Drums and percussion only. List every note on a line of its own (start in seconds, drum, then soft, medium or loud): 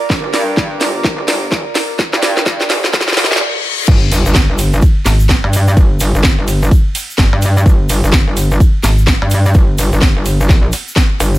0.10 kick loud
0.10 snare medium
0.34 snare medium
0.34 open hi-hat loud
0.57 kick loud
0.57 snare medium
0.81 snare medium
0.81 open hi-hat loud
1.04 kick loud
1.04 snare medium
1.28 snare medium
1.28 open hi-hat loud
1.52 kick loud
1.52 snare medium
1.75 snare medium
1.75 open hi-hat medium
1.99 kick loud
1.99 snare medium
2.13 snare medium
2.23 snare medium
2.23 open hi-hat loud
2.37 snare medium
2.46 kick loud
2.46 snare loud
2.60 snare medium
2.70 snare loud
2.70 open hi-hat medium
2.84 snare medium
2.93 kick loud
2.93 snare loud
3.01 snare medium
3.08 snare medium
3.12 snare medium
3.17 snare loud
3.17 open hi-hat loud
3.24 snare loud
3.31 snare medium
3.36 snare medium
3.88 kick loud
3.88 crash loud
3.88 ride medium
3.88 shaker soft
4.12 open hi-hat loud
4.12 ride medium
4.12 shaker medium
4.26 shaker soft
4.35 kick loud
4.35 snare loud
4.35 ride medium
4.35 shaker soft
4.58 open hi-hat medium
4.58 ride medium
4.58 shaker loud
4.73 shaker medium
4.82 kick loud
4.82 ride medium
4.82 shaker soft
5.05 snare medium
5.05 open hi-hat loud
5.05 ride medium
5.05 shaker medium
5.20 shaker medium
5.29 kick loud
5.29 snare loud
5.29 ride medium
5.29 shaker soft
5.53 open hi-hat medium
5.53 ride medium
5.53 shaker medium
5.67 shaker soft
5.77 kick loud
5.77 ride medium
5.77 shaker soft
6.00 open hi-hat loud
6.00 ride medium
6.00 shaker loud
6.15 shaker medium
6.24 kick loud
6.24 snare loud
6.24 ride medium
6.24 shaker soft
6.48 open hi-hat medium
6.48 ride medium
6.48 shaker medium
6.62 shaker medium
6.71 kick loud
6.71 ride medium
6.71 shaker soft
6.95 open hi-hat loud
6.95 ride medium
6.95 shaker loud
7.10 shaker medium
7.18 kick loud
7.18 snare loud
7.18 ride medium
7.18 shaker soft
7.42 open hi-hat loud
7.42 ride medium
7.42 shaker medium
7.57 shaker medium
7.66 kick loud
7.66 ride medium
7.66 shaker soft
7.89 open hi-hat loud
7.89 ride medium
7.89 shaker medium
8.04 shaker medium
8.13 kick loud
8.13 snare loud
8.13 ride medium
8.13 shaker soft
8.37 open hi-hat medium
8.37 ride medium
8.37 shaker loud
8.51 shaker medium
8.60 kick loud
8.60 ride medium
8.60 shaker soft
8.83 snare medium
8.83 open hi-hat loud
8.83 ride medium
8.83 shaker loud
8.98 shaker medium
9.07 kick loud
9.07 snare loud
9.07 ride medium
9.07 shaker soft
9.30 open hi-hat medium
9.30 ride medium
9.30 shaker medium
9.45 shaker soft
9.54 kick loud
9.54 ride medium
9.54 shaker soft
9.78 open hi-hat loud
9.78 ride medium
9.78 shaker loud
9.92 shaker medium
10.01 kick loud
10.01 snare loud
10.01 ride medium
10.01 shaker soft
10.26 open hi-hat medium
10.26 ride medium
10.26 shaker medium
10.40 shaker medium
10.49 kick loud
10.49 snare medium
10.49 ride medium
10.49 shaker soft
10.72 open hi-hat loud
10.72 ride medium
10.72 shaker medium
10.88 shaker medium
10.96 kick loud
10.96 snare loud
10.96 ride medium
10.96 shaker soft
11.20 open hi-hat loud
11.20 ride medium
11.20 shaker medium
11.34 shaker medium